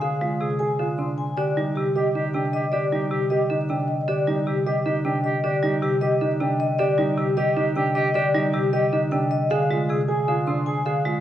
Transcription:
0.01 0.27 D3 medium
0.01 0.27 G#4 medium
0.01 0.16 G#4 medium
0.01 0.27 F5 medium
0.21 0.46 G#3 medium
0.21 0.47 F4 medium
0.21 0.35 G#4 medium
0.40 0.66 C3 medium
0.40 0.66 G#4 medium
0.40 0.55 G#4 medium
0.59 0.85 G#4 medium
0.59 0.74 G#4 medium
0.59 0.85 G#5 medium
0.79 1.05 D3 medium
0.79 1.05 F4 medium
0.79 0.93 G#4 medium
0.98 1.24 C3 medium
0.98 1.24 D4 medium
0.98 1.13 G#4 soft
0.98 1.24 C6 medium
1.18 1.43 G#5 medium
1.37 1.63 D3 medium
1.37 1.63 G4 medium
1.37 1.51 G4 soft
1.37 1.62 D5 medium
1.57 1.82 G3 medium
1.57 1.82 D#4 medium
1.57 1.71 G4 soft
1.75 2.02 C3 medium
1.75 2.01 G4 medium
1.75 1.90 G4 medium
1.95 2.21 G4 medium
1.95 2.09 G4 medium
1.95 2.21 D#5 medium
2.15 2.40 D3 medium
2.15 2.40 D#4 medium
2.15 2.29 G4 medium
2.34 2.60 C3 medium
2.34 2.59 D4 medium
2.34 2.48 G4 medium
2.34 2.59 G5 medium
2.53 2.67 G4 medium
2.53 2.79 D#5 medium
2.72 2.98 D3 medium
2.72 2.86 G4 medium
2.72 2.98 G4 medium
2.72 2.98 D5 medium
2.92 3.18 G3 medium
2.92 3.17 D#4 medium
2.92 3.06 G4 medium
3.11 3.37 C3 medium
3.11 3.37 G4 medium
3.11 3.25 G4 medium
3.30 3.56 G4 medium
3.30 3.45 G4 medium
3.30 3.56 D#5 medium
3.50 3.75 D3 medium
3.50 3.76 D#4 medium
3.50 3.64 G4 soft
3.69 3.95 C3 medium
3.69 3.95 D4 medium
3.69 3.83 G4 soft
3.69 3.95 G5 medium
3.88 4.14 D#5 medium
4.08 4.33 D3 medium
4.08 4.21 G4 soft
4.08 4.34 G4 medium
4.08 4.33 D5 medium
4.27 4.53 G3 medium
4.27 4.53 D#4 medium
4.27 4.41 G4 soft
4.46 4.72 C3 medium
4.46 4.60 G4 medium
4.46 4.72 G4 medium
4.66 4.80 G4 medium
4.66 4.92 G4 medium
4.66 4.92 D#5 medium
4.85 5.11 D3 medium
4.85 5.11 D#4 medium
4.85 4.99 G4 medium
5.05 5.30 C3 medium
5.05 5.30 D4 medium
5.05 5.19 G4 medium
5.05 5.30 G5 medium
5.24 5.38 G4 medium
5.24 5.50 D#5 medium
5.44 5.69 D3 medium
5.44 5.69 G4 medium
5.44 5.58 G4 medium
5.44 5.69 D5 medium
5.63 5.88 G3 medium
5.63 5.88 D#4 medium
5.63 5.77 G4 medium
5.82 6.08 C3 medium
5.82 5.96 G4 medium
5.82 6.08 G4 medium
6.01 6.15 G4 medium
6.01 6.27 G4 medium
6.01 6.27 D#5 loud
6.21 6.46 D3 medium
6.21 6.47 D#4 medium
6.21 6.34 G4 medium
6.40 6.66 C3 medium
6.40 6.66 D4 medium
6.40 6.54 G4 soft
6.40 6.66 G5 medium
6.60 6.85 D#5 loud
6.79 7.04 D3 medium
6.79 6.93 G4 soft
6.79 7.05 G4 medium
6.79 7.04 D5 loud
6.98 7.24 G3 medium
6.98 7.24 D#4 medium
6.98 7.12 G4 medium
7.18 7.43 C3 medium
7.18 7.43 G4 medium
7.18 7.31 G4 medium
7.37 7.63 G4 loud
7.37 7.51 G4 medium
7.37 7.62 D#5 loud
7.57 7.82 D3 medium
7.57 7.82 D#4 medium
7.57 7.70 G4 medium
7.76 8.01 C3 medium
7.76 8.01 D4 medium
7.76 7.90 G4 medium
7.76 8.01 G5 medium
7.95 8.09 G4 loud
7.95 8.21 D#5 loud
8.14 8.40 D3 medium
8.14 8.28 G4 loud
8.14 8.40 G4 loud
8.14 8.40 D5 loud
8.34 8.59 G3 medium
8.34 8.59 D#4 medium
8.34 8.47 G4 medium
8.53 8.79 C3 medium
8.53 8.67 G4 medium
8.53 8.79 G4 medium
8.72 8.86 G4 medium
8.72 8.98 G4 loud
8.72 8.98 D#5 loud
8.92 9.18 D3 medium
8.92 9.18 D#4 medium
8.92 9.06 G4 medium
9.11 9.37 C3 medium
9.11 9.37 D4 medium
9.11 9.25 G4 soft
9.11 9.37 G5 medium
9.31 9.56 D#5 loud
9.50 9.76 D3 loud
9.50 9.64 G#4 soft
9.50 9.76 G#4 medium
9.50 9.75 F5 loud
9.70 9.95 G#3 medium
9.70 9.95 F4 medium
9.70 9.83 G#4 medium
9.89 10.14 C3 medium
9.89 10.03 G#4 medium
9.89 10.14 G#4 medium
10.08 10.34 G#4 medium
10.08 10.22 G#4 medium
10.08 10.33 G#5 loud
10.28 10.53 D3 medium
10.28 10.53 F4 medium
10.28 10.41 G#4 medium
10.47 10.72 C3 medium
10.47 10.72 D4 medium
10.47 10.61 G#4 medium
10.47 10.72 C6 medium
10.66 10.80 G#4 medium
10.66 10.92 G#5 medium
10.85 11.11 D3 medium
10.85 10.99 G#4 medium
10.85 11.11 G#4 medium
10.85 11.11 F5 medium
11.05 11.20 G#3 medium
11.05 11.20 F4 medium
11.05 11.19 G#4 medium

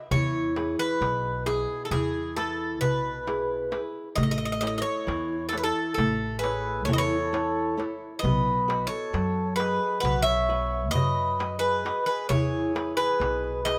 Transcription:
0.11 0.74 E2 medium
0.11 0.99 E3 medium
0.11 0.75 C#5 medium
0.11 darbuka dum medium
0.56 1.28 E4 soft
0.56 1.29 G#4 soft
0.56 1.29 B4 medium
0.56 darbuka tek medium
0.79 1.43 B4 medium
1.01 1.64 B1 medium
1.01 1.89 B2 medium
1.01 darbuka tek medium
1.46 2.18 E4 soft
1.46 1.82 G#4 medium
1.46 2.18 G#4 soft
1.46 2.19 B4 soft
1.46 darbuka tek medium
1.85 1.91 A4 medium
1.91 2.81 E2 medium
1.91 2.80 E3 medium
1.91 2.36 G#4 medium
1.91 darbuka tek medium
1.91 darbuka dum medium
2.37 3.09 E4 soft
2.37 2.78 A4 medium
2.37 3.09 B4 medium
2.37 darbuka tek medium
2.81 3.76 B1 medium
2.81 3.69 B2 medium
2.81 3.79 B4 medium
2.81 darbuka dum medium
3.27 3.70 E4 medium
3.27 3.70 G#4 soft
3.27 3.71 B4 medium
3.27 darbuka tek medium
3.71 4.08 E4 soft
3.71 4.08 G#4 soft
3.71 4.08 B4 medium
3.71 darbuka tek medium
4.16 4.80 A1 medium
4.16 5.04 A3 medium
4.16 4.22 D#5 medium
4.16 darbuka dum medium
4.23 4.30 D#5 medium
4.31 4.37 D#5 medium
4.38 4.44 D#5 medium
4.45 4.51 D#5 medium
4.52 4.60 D#5 medium
4.61 5.34 E4 soft
4.61 5.34 A4 soft
4.61 5.35 C#5 soft
4.61 4.66 D#5 medium
4.61 darbuka tek medium
4.67 4.75 D#5 medium
4.78 5.47 C#5 medium
4.78 4.81 D#5 medium
5.07 5.71 E2 medium
5.07 5.95 E3 medium
5.07 darbuka tek medium
5.49 5.57 A4 medium
5.49 darbuka tek medium
5.53 6.25 E4 soft
5.53 6.25 A4 soft
5.53 6.26 C#5 soft
5.58 5.63 B4 medium
5.64 5.93 A4 medium
5.94 6.88 A1 medium
5.94 6.85 A3 medium
5.94 6.38 A4 medium
5.98 darbuka tek medium
5.98 darbuka dum medium
6.39 6.83 G#4 medium
6.39 6.85 B4 medium
6.43 7.15 E4 medium
6.43 7.16 C#5 medium
6.43 darbuka tek medium
6.85 7.83 E2 medium
6.85 7.75 E3 medium
6.85 6.93 A4 medium
6.85 6.93 C#5 medium
6.85 darbuka dum medium
6.93 7.01 B4 medium
6.93 6.98 D#5 medium
6.98 7.84 A4 medium
6.98 7.84 C#5 medium
7.33 7.76 E4 medium
7.33 7.77 A4 soft
7.33 7.77 C#5 medium
7.33 darbuka tek medium
7.77 8.14 E4 medium
7.77 8.14 A4 soft
7.77 8.14 C#5 medium
7.77 darbuka tek medium
8.19 8.86 B1 medium
8.19 8.86 B4 medium
8.19 8.85 D#5 medium
8.23 9.11 B3 medium
8.23 darbuka dum medium
8.68 9.40 F#4 medium
8.68 9.40 B4 soft
8.68 9.41 D#5 soft
8.68 darbuka tek medium
8.87 9.54 A4 medium
8.87 9.55 C#5 medium
9.13 9.77 F#2 medium
9.13 10.01 F#3 medium
9.13 darbuka tek medium
9.56 10.30 F#4 soft
9.56 9.99 G#4 medium
9.56 9.99 B4 medium
9.56 10.31 B4 soft
9.56 10.31 D#5 soft
9.56 darbuka tek medium
10.00 10.94 B1 medium
10.00 10.92 B3 medium
10.00 10.23 F#4 medium
10.00 10.22 B4 medium
10.05 darbuka tek medium
10.05 darbuka dum medium
10.22 10.89 C#5 medium
10.22 10.88 E5 medium
10.49 11.21 F#4 soft
10.49 11.21 B4 soft
10.49 11.22 F#5 medium
10.91 11.89 F#2 medium
10.91 11.56 B4 medium
10.91 11.59 D#5 loud
10.95 11.82 F#3 medium
10.95 darbuka dum medium
11.39 11.84 F#4 soft
11.39 11.84 B4 soft
11.39 11.85 D#5 medium
11.39 darbuka tek medium
11.59 12.03 G#4 medium
11.59 12.05 B4 medium
11.85 12.21 F#4 soft
11.85 12.21 B4 soft
11.85 12.21 D#5 medium
11.85 darbuka tek medium
12.06 12.27 G#4 medium
12.06 12.29 B4 medium
12.29 12.93 E2 medium
12.29 13.18 E3 medium
12.29 12.93 G#4 medium
12.29 12.96 C#5 medium
12.29 darbuka dum loud
12.54 darbuka tek soft
12.75 13.47 E4 soft
12.75 13.47 G#4 soft
12.75 13.47 B4 soft
12.75 darbuka tek medium
12.97 13.61 G#4 medium
12.97 13.65 B4 medium
12.97 darbuka tek soft
13.20 13.79 B1 medium
13.20 13.79 B2 medium
13.20 darbuka tek medium
13.44 darbuka tek soft
13.64 13.79 E4 soft
13.64 13.79 G#4 soft
13.64 13.79 B4 medium
13.64 13.79 B4 soft
13.64 13.79 D#5 medium
13.64 darbuka tek medium

